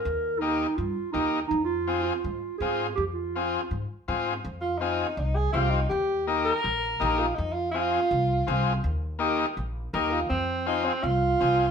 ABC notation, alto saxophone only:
X:1
M:4/4
L:1/8
Q:1/4=164
K:Fm
V:1 name="Alto saxophone"
z8 | z8 | z8 | z F E2 E A F E |
G2 z B4 F | E F F6 | z6 B F | C2 E C F4 |]